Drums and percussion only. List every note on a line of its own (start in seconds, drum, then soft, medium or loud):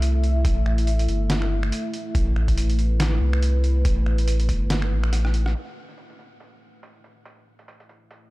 0.02 closed hi-hat medium
0.24 closed hi-hat soft
0.45 kick loud
0.45 closed hi-hat medium
0.66 finger snap medium
0.78 closed hi-hat medium
0.87 closed hi-hat medium
0.99 closed hi-hat soft
1.09 closed hi-hat soft
1.30 snare loud
1.30 closed hi-hat medium
1.42 finger snap medium
1.63 finger snap medium
1.72 closed hi-hat medium
1.94 closed hi-hat medium
2.15 kick loud
2.15 closed hi-hat medium
2.36 finger snap medium
2.48 kick medium
2.48 closed hi-hat medium
2.58 closed hi-hat medium
2.70 closed hi-hat medium
2.79 closed hi-hat medium
3.00 snare loud
3.00 closed hi-hat medium
3.33 finger snap medium
3.43 closed hi-hat medium
3.64 closed hi-hat medium
3.85 kick loud
3.85 closed hi-hat medium
4.06 finger snap medium
4.18 closed hi-hat medium
4.28 closed hi-hat medium
4.40 closed hi-hat medium
4.49 kick medium
4.49 closed hi-hat medium
4.70 snare loud
4.70 closed hi-hat medium
4.82 finger snap medium
5.04 finger snap medium
5.13 cross-stick medium
5.13 closed hi-hat medium
5.25 cross-stick medium
5.34 closed hi-hat medium
5.46 cross-stick medium
5.55 closed hi-hat medium
5.89 closed hi-hat medium
5.98 closed hi-hat medium
6.10 closed hi-hat medium
6.19 closed hi-hat medium
6.40 closed hi-hat medium
6.83 closed hi-hat medium
7.04 closed hi-hat medium
7.25 closed hi-hat medium
7.59 closed hi-hat medium
7.68 closed hi-hat medium
7.80 closed hi-hat medium
7.89 closed hi-hat soft
8.11 closed hi-hat medium